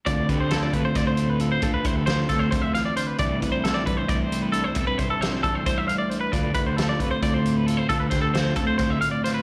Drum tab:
HH |xxxxxxx|xxxxxxx|xxxxxxx|xxxxxxx|
SD |--o-o--|--oo-o-|--o----|--o----|
BD |oo-oo--|oo-oo--|oo-oo--|oo-oo--|

HH |xxxxxxx|xxxxxxx|
SD |--o----|-oo-o-o|
BD |oo-oo--|oo-oo--|